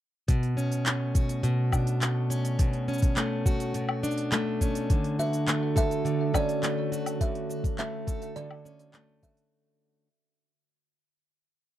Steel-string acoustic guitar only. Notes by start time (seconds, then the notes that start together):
0.28 B2
0.57 C#4
0.85 A3
1.15 F#4
1.43 B2
1.72 D4
2.01 A3
2.30 C#4
2.59 B2
2.88 C#4
3.17 A3
3.46 F#4
3.75 B2
4.03 D4
4.32 A3
4.61 C#4
4.90 D3
5.19 F#4
5.47 A3
5.76 A4
6.05 D3
6.34 C#4
6.63 A3
6.92 F#4
7.21 D3
7.49 F#4
7.78 A3
8.07 A4
8.36 D3
8.65 C#4
8.94 A3
9.23 F#4